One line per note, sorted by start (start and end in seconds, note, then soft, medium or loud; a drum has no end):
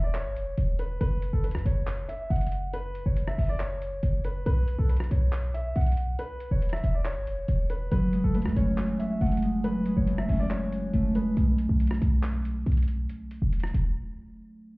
0.00 0.27 E1 loud
0.00 0.14 D5 medium
0.14 0.75 C#5 medium
0.14 clap loud
0.14 closed hi-hat medium
0.25 0.43 G#1 loud
0.36 closed hi-hat medium
0.42 0.57 E1 loud
0.58 0.99 E1 loud
0.58 closed hi-hat medium
0.79 0.99 B4 medium
0.79 closed hi-hat medium
1.01 1.32 F#1 loud
1.01 1.31 B4 loud
1.01 closed hi-hat medium
1.22 closed hi-hat medium
1.33 1.56 F#1 loud
1.33 1.43 A4 medium
1.44 1.64 B4 medium
1.44 closed hi-hat medium
1.51 1.65 F#2 loud
1.51 cross-stick medium
1.51 closed hi-hat medium
1.58 closed hi-hat medium
1.66 2.07 F#1 loud
1.66 2.06 C#5 medium
1.66 closed hi-hat medium
1.87 clap loud
1.87 closed hi-hat medium
2.09 2.28 E5 medium
2.09 closed hi-hat medium
2.30 3.03 F#1 loud
2.30 2.71 F#5 medium
2.30 closed hi-hat soft
2.36 closed hi-hat soft
2.41 closed hi-hat medium
2.47 closed hi-hat medium
2.52 closed hi-hat medium
2.73 3.04 B4 loud
2.73 closed hi-hat medium
2.95 closed hi-hat medium
3.06 3.37 F#1 loud
3.06 3.26 C#5 medium
3.17 closed hi-hat medium
3.28 3.47 E5 medium
3.28 cross-stick medium
3.38 4.00 F#1 loud
3.38 open hi-hat medium
3.49 3.59 D5 medium
3.60 4.21 C#5 medium
3.60 clap loud
3.60 closed hi-hat medium
3.82 closed hi-hat medium
4.03 4.44 F#1 loud
4.03 closed hi-hat medium
4.25 4.44 B4 medium
4.25 closed hi-hat medium
4.46 4.77 B1 loud
4.46 4.77 B4 loud
4.46 closed hi-hat medium
4.68 closed hi-hat medium
4.78 5.10 B1 loud
4.78 4.88 A4 medium
4.89 5.09 B4 medium
4.89 closed hi-hat medium
4.97 cross-stick medium
4.97 closed hi-hat medium
5.04 closed hi-hat medium
5.11 5.73 B1 loud
5.11 5.52 C#5 medium
5.11 closed hi-hat medium
5.33 clap loud
5.33 closed hi-hat medium
5.54 5.74 E5 medium
5.54 closed hi-hat medium
5.76 6.17 B1 loud
5.76 6.16 F#5 medium
5.76 closed hi-hat soft
5.81 closed hi-hat soft
5.86 closed hi-hat medium
5.92 closed hi-hat medium
5.97 closed hi-hat medium
6.19 6.49 B4 loud
6.19 closed hi-hat medium
6.40 closed hi-hat medium
6.51 6.82 E1 loud
6.51 6.71 C#5 medium
6.62 closed hi-hat medium
6.69 6.93 E5 medium
6.69 cross-stick medium
6.69 closed hi-hat medium
6.76 closed hi-hat medium
6.84 7.18 E1 loud
6.84 closed hi-hat medium
6.94 7.04 D5 medium
7.05 7.66 C#5 medium
7.05 clap loud
7.05 closed hi-hat medium
7.16 7.34 G#1 loud
7.27 closed hi-hat medium
7.32 7.48 E1 loud
7.48 7.90 E1 loud
7.48 closed hi-hat medium
7.70 7.90 B4 medium
7.70 closed hi-hat medium
7.92 8.23 F#1 loud
7.92 9.63 F#3 medium
7.92 8.22 B4 loud
7.92 closed hi-hat medium
8.13 9.41 G#3 medium
8.13 closed hi-hat medium
8.24 8.47 F#1 loud
8.24 8.34 A4 medium
8.35 9.21 A3 medium
8.35 8.54 B4 medium
8.35 closed hi-hat medium
8.42 8.56 F#2 loud
8.42 cross-stick medium
8.42 closed hi-hat medium
8.49 closed hi-hat medium
8.56 8.98 F#1 loud
8.56 10.29 C#4 loud
8.56 8.97 C#5 medium
8.56 closed hi-hat medium
8.78 10.50 F#4 medium
8.78 clap loud
8.78 closed hi-hat medium
8.99 9.19 E5 medium
8.99 closed hi-hat medium
9.21 9.94 F#1 loud
9.21 10.07 A3 medium
9.21 9.62 F#5 medium
9.21 closed hi-hat soft
9.26 closed hi-hat soft
9.32 closed hi-hat medium
9.37 closed hi-hat medium
9.42 9.85 G#3 medium
9.42 closed hi-hat medium
9.64 11.42 F#3 medium
9.64 9.95 B4 loud
9.64 closed hi-hat medium
9.86 11.14 G#3 medium
9.86 closed hi-hat medium
9.97 10.28 F#1 loud
9.97 10.16 C#5 medium
10.07 10.93 A3 medium
10.07 closed hi-hat medium
10.18 10.38 E5 medium
10.18 cross-stick medium
10.29 10.91 F#1 loud
10.29 13.19 C#4 medium
10.29 open hi-hat medium
10.40 10.50 D5 medium
10.50 12.94 F#4 medium
10.50 11.11 C#5 loud
10.50 clap loud
10.50 closed hi-hat medium
10.73 closed hi-hat medium
10.94 11.35 F#1 loud
10.94 14.27 A3 medium
10.94 closed hi-hat medium
11.15 11.42 G#3 medium
11.15 11.35 B4 medium
11.15 closed hi-hat medium
11.37 11.68 B1 loud
11.37 closed hi-hat medium
11.58 closed hi-hat medium
11.69 12.00 B1 loud
11.80 closed hi-hat medium
11.87 cross-stick loud
11.87 closed hi-hat medium
11.94 closed hi-hat medium
12.02 12.64 B1 loud
12.02 closed hi-hat medium
12.23 clap loud
12.23 closed hi-hat medium
12.45 closed hi-hat medium
12.66 13.08 B1 loud
12.66 closed hi-hat soft
12.72 closed hi-hat soft
12.77 closed hi-hat medium
12.83 closed hi-hat medium
12.88 closed hi-hat medium
13.10 closed hi-hat medium
13.31 closed hi-hat medium
13.42 13.73 E1 loud
13.53 closed hi-hat medium
13.60 cross-stick medium
13.60 closed hi-hat medium
13.67 closed hi-hat medium
13.74 13.96 E1 loud
13.74 closed hi-hat medium